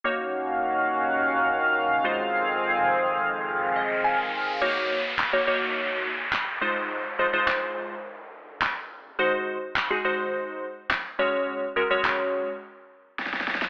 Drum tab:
CC |--------------------------------|--------------------------------|x-------------------------------|--------------------------------|
CP |--------------------------------|--------------------------------|--------x---------------x-------|--------x---------------x-------|
SD |--------------------------------|--------------------------------|--------o---------------o-------|--------o---------------o-------|

CC |--------------------------------|--------------------------------|
CP |--------x---------------x-------|--------x-----------------------|
SD |--------o---------------o-------|--------o---------------ooooooo-|